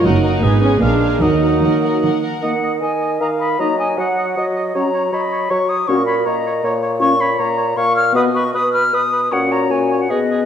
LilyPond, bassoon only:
\new Staff \with { instrumentName = "Bassoon" } { \clef bass \time 3/4 \key ees \minor \tempo 4 = 155 ges4 aes4 aes4 | ges2~ ges8 r8 | ees4 ees4 ees4 | ges4 ges4 ges4 |
ges4 ges4 ges4 | bes,4 bes,4 bes,4 | \key fis \major ais,4 ais,4 ais,4 | b,4 b,4 b,4 |
ais,4 ais,4 b,4 | }